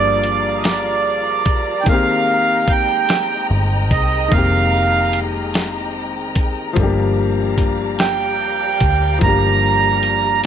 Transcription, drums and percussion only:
0.24 closed hi-hat
0.64 snare, closed hi-hat
1.46 kick, closed hi-hat
1.86 kick, closed hi-hat
2.68 kick, closed hi-hat
3.09 snare, closed hi-hat
3.91 kick, closed hi-hat
4.32 kick, closed hi-hat
5.13 closed hi-hat
5.54 snare, closed hi-hat
6.35 kick, closed hi-hat
6.76 kick, closed hi-hat
7.58 kick, closed hi-hat
7.99 snare, closed hi-hat
8.80 kick, closed hi-hat
9.21 kick, closed hi-hat
10.03 closed hi-hat

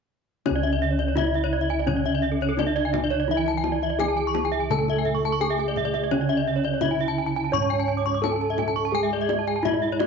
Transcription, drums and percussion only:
0.46 kendang high
0.63 kendang slap
0.99 kendang slap
1.17 kendang high, kendang low
1.34 kendang slap
1.69 kendang slap
1.88 kendang low
2.05 kendang slap
2.41 kendang slap
2.59 kendang high
2.77 kendang slap
2.94 kendang high, kendang low
3.11 kendang slap
3.46 kendang slap
3.64 kendang high
3.82 kendang slap
3.99 kendang high, kendang low
4.18 kendang slap
4.35 kendang high
4.53 kendang slap
4.70 kendang low
4.88 kendang slap
5.05 kendang low
5.23 kendang slap
5.58 kendang slap
5.76 kendang low
5.94 kendang slap
6.11 kendang high
6.29 kendang slap
6.64 kendang slap
6.81 kendang high, kendang low
6.99 kendang slap
7.35 kendang slap
7.54 kendang low
7.72 kendang slap
8.07 kendang slap
8.24 kendang high
8.41 kendang slap
8.58 kendang high, kendang low
8.76 kendang slap
9.11 kendang slap
9.29 kendang high
9.47 kendang slap
9.65 kendang high, kendang low
9.83 kendang slap
10.00 kendang high

